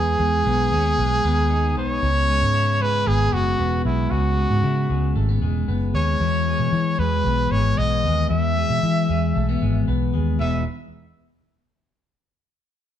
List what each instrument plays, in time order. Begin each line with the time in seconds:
Already playing: fingered electric bass E2, clean electric guitar G#3 B3 D#4, trumpet G#4
0.19 fingered electric bass E2, clean electric guitar G#3
0.46 fingered electric bass B1, clean electric guitar B3
0.72 fingered electric bass D#2, clean electric guitar C#4
0.86 clean electric guitar D#4
0.98 fingered electric bass B1, clean electric guitar G#3
1.24 fingered electric bass D#2, clean electric guitar B3
1.50 clean electric guitar D#4
1.77 fingered electric bass B1, clean electric guitar B3, trumpet C#5
2.03 fingered electric bass C#2, clean electric guitar C#3
2.29 clean electric guitar G#3
2.42 fingered electric bass G#2
2.54 clean electric guitar E4
2.80 clean electric guitar G#3, trumpet B4
3.06 fingered electric bass G#1, clean electric guitar B3, trumpet G#4
3.33 fingered electric bass F#1, clean electric guitar G#3, trumpet F#4
3.59 fingered electric bass E1, clean electric guitar B3
3.85 fingered electric bass B1, clean electric guitar G#3, trumpet E4
4.11 fingered electric bass C#2, clean electric guitar C#3, trumpet F#4
4.37 clean electric guitar G#3
4.50 fingered electric bass G#2
4.63 fingered electric bass C#3, clean electric guitar E4
4.89 fingered electric bass C#2, clean electric guitar G#3
5.16 fingered electric bass G#1, clean electric guitar A3
5.29 clean electric guitar B3
5.42 fingered electric bass E1, clean electric guitar G#3
5.68 fingered electric bass F#1, clean electric guitar B3
5.94 fingered electric bass D#2, clean electric guitar G#3, trumpet C#5
6.20 fingered electric bass E2, clean electric guitar E3
6.47 clean electric guitar G#3
6.59 fingered electric bass B2
6.72 fingered electric bass E3
6.98 fingered electric bass E2, clean electric guitar G#3, trumpet B4
7.25 fingered electric bass B1, clean electric guitar B3
7.51 fingered electric bass G#1, clean electric guitar G#3, trumpet C#5
7.78 fingered electric bass B1, clean electric guitar B3, trumpet D#5
8.04 fingered electric bass D#2, clean electric guitar G#3
8.29 fingered electric bass E2, clean electric guitar E3, trumpet E5
8.56 clean electric guitar G#3
8.70 fingered electric bass B2
8.83 fingered electric bass E3
9.09 fingered electric bass E2, clean electric guitar G#3
9.35 fingered electric bass B1, clean electric guitar A3
9.49 clean electric guitar B3
9.61 fingered electric bass G#1, clean electric guitar G#3
9.88 fingered electric bass B1, clean electric guitar B3
10.14 fingered electric bass D#2, clean electric guitar G#3
10.39 fingered electric bass E1, clean electric guitar E3 G#3 B3 D#4, trumpet E5